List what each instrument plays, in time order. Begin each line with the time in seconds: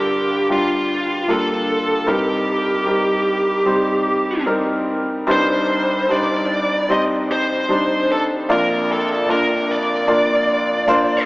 Already playing: upright piano G2 D3 G3 D4 F4 A#4, lead electric guitar G4
0.49 upright piano G3 D4 F4 G4, lead electric guitar F4
1.27 upright piano G3 A#3 D4 F4, lead electric guitar A4
2.07 upright piano C2 G2 G3 C4 D#4 A#4, lead electric guitar G4
2.86 upright piano G3 C4 D#4 A#4
3.66 upright piano G3 C4 D#4 C5
4.46 upright piano G3 C4 D#4 A#4
5.27 upright piano C2 G2 G3 D4 D#4 C5
5.32 lead electric guitar C5
6.08 upright piano G3 D4 D#4 C5, lead electric guitar D5
6.89 upright piano G3 C4 D#4 C5, lead electric guitar D#5
7.32 lead electric guitar C5
7.68 upright piano G3 D4 D#4 C5
8.12 lead electric guitar A4
8.49 upright piano A#1 F2 A#3 D4 F4 D5, lead electric guitar A#4
8.92 lead electric guitar A4
9.29 upright piano A#3 D4 F4 D5, lead electric guitar A#4
9.71 lead electric guitar D5
10.07 upright piano A#3 D4 F4 D5
10.88 upright piano A#3 D4 F4 C5